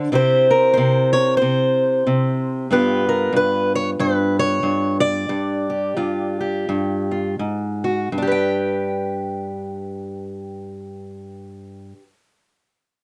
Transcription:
Already playing: D3 D4 C5
0.12 C3 C4 E4 G4 C5
0.51 A#4
0.74 C3 C5
1.13 C#5
1.37 C5
1.42 C3
2.07 C3
2.71 G2 B3 F4 G4 B4
3.09 A#4
3.33 G2 B4
3.75 C#5
3.99 G2 B4
4.39 C#5
4.63 G2
5.00 D5
5.29 G2
5.70 G4
5.97 G2 F4
6.41 G4
6.69 G2
7.11 F4
7.39 G#2
7.84 F#4
8.12 G2
8.18 D4
8.22 G4
8.27 B4
8.32 G5

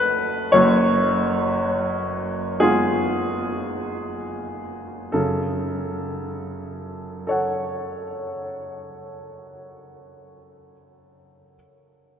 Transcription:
Already playing: F#1 F#2 A3 C#4 F#4 A4 B4
0.52 F#1 F#2 C#5
2.60 G#3 B3 F4 G#4
5.12 F#2 C#3 A4
7.27 A4 C#5 F#5

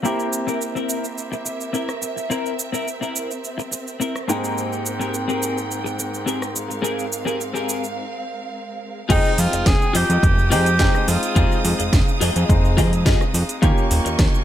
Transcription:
0.03 A#3 C4 E4 G4 A#4 E5, cabasa
0.20 cabasa
0.33 cabasa
0.47 C4 E4 A#4, cabasa
0.62 cabasa
0.75 C4 E4 A#4, cabasa
0.89 cabasa
1.04 cabasa
1.18 cabasa
1.32 muted clean electric guitar stroke, cabasa
1.45 muted clean electric guitar stroke, cabasa
1.61 cabasa
1.73 C4 E4 A#4, cabasa
1.89 cross-stick, cabasa
2.02 muted clean electric guitar stroke, cabasa
2.16 muted clean electric guitar stroke, cabasa
2.30 C4 E4 A#4, cabasa
2.46 cabasa
2.59 cabasa
2.72 C4 E4 A#4, cabasa
2.88 cabasa
3.01 C4 E4 A#4, cabasa
3.16 cabasa
3.31 cabasa
3.44 cabasa
3.58 muted clean electric guitar stroke, cabasa
3.71 muted clean electric guitar stroke, cabasa
3.87 cabasa
4.00 C4 E4 A#4, cabasa
4.16 cross-stick, cabasa
4.28 G#2 G#3 A#3 C4 D#4 G4 G#4 A#4 G5, cabasa
4.44 cabasa
4.58 cabasa
4.73 cabasa
4.86 cabasa
4.99 C4 G4 G#4 A#4, cabasa
5.14 cabasa
5.28 C4 G4 G#4 A#4, cabasa
5.43 cabasa
5.58 cabasa
5.71 cabasa
5.84 muted clean electric guitar stroke, cabasa
5.98 muted clean electric guitar stroke, cabasa
6.14 cabasa
6.26 C4 G4 G#4 A#4, cabasa
6.42 cross-stick, cabasa
6.54 F5, muted clean electric guitar stroke, cabasa
6.68 muted clean electric guitar stroke, cabasa
6.82 C4 G4 G#4 A#4, cabasa
6.99 cabasa
7.12 cabasa
7.25 C4 G4 G#4 A#4, cabasa
7.41 cabasa
7.54 C4 G4 G#4 A#4, cabasa
7.69 cabasa
7.84 cabasa
9.09 F1 G#3 C4 D#4 F4 G4 G#4 D#5 G5 D#6, kick, closed hi-hat, crash, cabasa
9.25 cabasa
9.38 F2 F4, open hi-hat, cabasa
9.52 F1, muted clean electric guitar stroke, closed hi-hat, cabasa
9.66 F1 G#4, muted clean electric guitar stroke, kick, snare, closed hi-hat, cabasa
9.82 cabasa
9.93 F2 F4 G4 G#4 D#5, open hi-hat, cabasa
10.10 F2, closed hi-hat, cabasa
10.23 F1, kick, closed hi-hat, cabasa
10.38 cabasa
10.50 F2 G#3 C4 D#4 F4 G4 G#4 D#5, cross-stick, open hi-hat, cabasa
10.66 closed hi-hat, cabasa
10.79 F1 G#3 C4 D#4 F4 G4 G#4 D#5 G5, kick, snare, closed hi-hat, cabasa
10.95 cross-stick, cabasa
11.07 F2 F4, muted clean electric guitar stroke, open hi-hat, cabasa
11.23 closed hi-hat, cabasa
11.35 F1 G#3 C4 D#4 F4 G4 G#4 D#5 F5, kick, closed hi-hat, cabasa
11.52 cabasa
11.65 F2, open hi-hat, cabasa
11.79 F1, muted clean electric guitar stroke, closed hi-hat, cabasa
11.92 F1, muted clean electric guitar stroke, kick, snare, closed hi-hat, cabasa
12.08 cabasa
12.21 F2 F4 G4 G#4 D#5, open hi-hat, cabasa
12.36 F2, closed hi-hat, cabasa
12.49 F1 G#3 C4 D#4, kick, closed hi-hat, cabasa
12.65 cabasa
12.77 F2 F4 G4 G#4 D#5, kick, cross-stick, open hi-hat, cabasa
12.93 closed hi-hat, cabasa
13.05 F1 F4 G4 G#4 D#5, kick, snare, closed hi-hat, cabasa
13.21 cross-stick, cabasa
13.34 F2, muted clean electric guitar stroke, open hi-hat, cabasa
13.49 closed hi-hat, cabasa
13.62 D#2 A#3 C#4 D#4 F4 G4 A#4 C#5 D#5 C#6, kick, closed hi-hat, cabasa
13.78 cabasa
13.91 D#1, open hi-hat, cabasa
14.05 D#2, muted clean electric guitar stroke, closed hi-hat, cabasa
14.18 D#2, muted clean electric guitar stroke, kick, snare, closed hi-hat, cabasa
14.35 cabasa

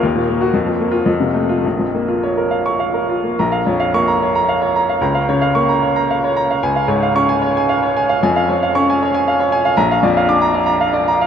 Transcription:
0.03 D#2
0.16 A#2
0.29 A#3
0.41 F#4
0.54 F2
0.66 F3
0.81 A#3
0.91 F4
1.06 F2
1.20 C3
1.34 A3
1.49 F4
1.64 A#1
1.79 F2
1.95 A#3
2.08 F4
2.23 C#5
2.37 A#4
2.51 F5
2.66 C#6
2.80 F5
2.94 A#4
3.09 F4
3.24 A#3
3.39 A#1 A#5
3.52 F5
3.66 F2 C#5
3.80 F5
3.94 A#3 C#6
4.08 A#5
4.22 C#5
4.35 A#5
4.49 F5
4.62 C#5
4.76 A#5
4.89 F5
5.01 C#2 A#5
5.15 F5
5.29 C#3 C#5
5.41 F5
5.55 A#3 C#6
5.69 A#5
5.83 C#5
5.96 A#5
6.10 F5
6.24 C#5
6.36 A#5
6.50 F5
6.63 C#2 G#5
6.76 F5
6.88 G#2 C#5
7.03 F5
7.15 C#4 C#6
7.29 G#5
7.42 C#5
7.57 G#5
7.69 F5
7.83 C#5
7.96 G#5
8.09 F5
8.23 F2 G#5
8.36 F5
8.49 F3 C#5
8.63 F5
8.75 C#4 C#6
8.90 G#5
9.03 C#5
9.14 G#5
9.28 F5
9.40 C#5
9.52 G#5
9.65 F5
9.77 A#1 A#5
9.91 F5
10.03 F2 D5
10.17 F5
10.29 D4 D6
10.41 A#5
10.54 D5
10.66 A#5
10.81 F5
10.94 D5
11.08 A#5
11.21 F5

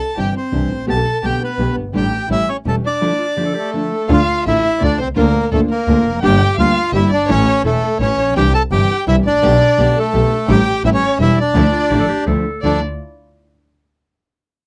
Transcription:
Already playing: A4 A5
0.17 G1 C3 E3 G3 C4 D4 E4 G4 G5
0.36 C4 C5
0.52 C2 C3 E3 G3 C4 D4 E4
0.71 A1
0.87 B1 B2 D3 A3 B3 G4 A4 A5
1.23 B1 B2 D3 A3 B3 G4 G5
1.43 B3 B4
1.58 B1 B2 D3 A3 B3 G4
1.76 G1
1.93 A1 D3 G3 A3 D4 E4 G4
1.97 G5
2.29 A1 E3 G3 A3 C#4 E4 G4 E5
2.49 C#4 C#5
2.65 E1 E3 G3 A3 C#4 E4 G4 A4
2.85 D4 D5
3.01 D3 F3 A3 D4 E4
3.18 F4
3.36 D3 F3 A3 D4 E4 G4
3.44 A4
3.54 G4 A4
3.58 A3
3.72 D3 F3 A3 D4 E4 A4
4.08 D2 D3 A3 D4 F4 F5
4.13 F4
4.45 A1 D3 A3 D4 E4 F4 E5
4.80 D2 D3 A3 D4 F4 D5
4.84 D4
4.99 C2 C4 C5
5.16 D2 D3 A#3 D4 F4 A#4
5.51 D2 D3 A3 A#3 D4 F4 A4
5.70 A#3 A#4
5.87 D2 D3 A#3 D4 F4
6.05 F1
6.22 G1 D3 G3 A#3 D4 G4 G5
6.57 D2 D3 G3 A#3 D4 F4 G4 F5
6.92 G1 D3 G3 A#3 D4 E4 G4 E5
7.10 G1 D4 D5
7.28 A1 E3 A3 C#4 E4 C#5
7.63 E1 E3 A3 C#4 E4 A4
7.99 A1 E3 A3 C#4 E4 C#5
8.18 A#1
8.35 C2 C3 E3 G3 C4 D4 E4 G4 G5
8.55 A4 A5
8.71 G1 C3 E3 G3 C4 D4 E4 G4 G5
9.07 C2 C3 E3 G3 C4 D4 E4 E5
9.25 A1 D4 D5
9.42 B1 B2 D3 A3 B3 G4
9.77 B1 B2 D3 A3 B3 G4
9.96 A3 A4
10.13 B1 B2 D3 A3 B3 G4
10.48 A1 D3 G3 A3 D4 E4 G4 G5
10.84 A1 E3 G3 A3 C#4 E4 G4 E5
10.94 C#4 C#5
11.19 E1 E3 G3 A3 C#4 E4 G4 E5
11.38 D4 D5
11.54 D2 D3 F3 A3 D4 E4
11.72 F4
11.90 A1 D3 F3 A3 D4 E4 G4
11.99 A4
12.08 G4
12.26 D2 D3 F3 A3 D4 E4 A4
12.62 D2 D3 F3 A3 D4 E4 F4 A4 D5

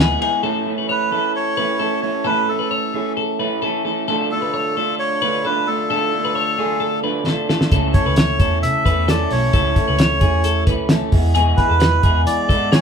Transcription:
Already playing: D2 E3 G#3 B3 E4
0.00 G#4
0.20 E3 G#3 B3 E4 G#4, ride
0.43 A2 E3 A3 C#4 E4 A4
0.66 E3 A3 C#4 E4
0.78 B4
0.89 B4 C#5
1.11 E3 A3 C#4 E4 A4
1.36 C#5
1.57 E3 A3 C#4 E4 B4
1.79 E3 A3 C#4 E4 A4
2.02 E3 A3 C#4 E4 C#5
2.25 A2 E3 A3 C#4 E4 A4 B4
2.48 E3 A3 C#4 E4 A4
2.59 B4
2.71 C#5
2.94 E3 A3 C#4 E4 G#4
3.17 A4
3.39 E3 A3 C#4 E4 B4
3.62 E3 A3 C#4 E4 A4
3.85 E3 A3 C#4 E4 A4
4.08 D3 A3 D4 F4 A4
4.31 D3 A3 D4 F4 A4
4.42 B4
4.54 C#5
4.77 D3 A3 D4 F4 A4
4.99 C#5
5.22 D3 A3 D4 F4 B4
5.45 D3 A3 D4 F4 A4 B4
5.67 D3 A3 D4 F4 A4
5.90 D3 A3 D4 F4 A4
6.13 D3 A3 D4 F4
6.25 B4
6.35 C#5
6.58 D3 A3 D4 F4 G#4
6.80 A4
7.03 D3 A3 D4 F4 B4
7.25 D3 A3 D4 F4 A4, snare
7.48 D3 A3 D4 F4 A4, snare
7.61 snare
7.71 C#2 C#3 E3 A3 C#4 E4 A4, kick, closed hi-hat
7.94 E3 A3 C#4 E4 C#5, kick, closed hi-hat
8.06 C#2 B4
8.16 C#5, snare, closed hi-hat
8.40 E2 E3 A3 C#4 E4 A4, kick, closed hi-hat
8.62 C#3 E5, closed hi-hat
8.85 E2 E3 A3 C#4 E4 B4, kick, closed hi-hat
9.08 E3 A3 C#4 E4 A4 D5, snare, closed hi-hat
9.31 B1 E3 A3 C#4 E4 C#5, open hi-hat
9.53 C#2 C#3 E3 A3 C#4 E4 A4, kick, closed hi-hat
9.76 E3 A3 C#4 E4, kick, closed hi-hat
9.88 C#2 B4
9.98 C#5, snare, closed hi-hat
10.21 E2 E3 A3 C#4 E4 G#4, kick, closed hi-hat
10.44 A4, closed hi-hat
10.67 C#2 E3 A3 C#4 E4 B4, kick, closed hi-hat
10.89 E3 A3 C#4 E4 A4, snare, closed hi-hat
11.12 E2 E3 G#3 B3 E4 G#4, kick, open hi-hat
11.35 E2 B2 E3 G#3 B3 E4 G#4, closed hi-hat
11.57 E3 G#3 B3 E4 B4, kick, closed hi-hat
11.69 E2 A4
11.80 B4, snare, closed hi-hat
12.03 E2 E3 G#3 B3 E4 G#4, kick, closed hi-hat
12.25 E3 D5, closed hi-hat
12.49 G#2 E3 G#3 B3 E4 A4, kick, closed hi-hat
12.72 E3 G#3 B3 E4 G#4 C#5, snare, closed hi-hat

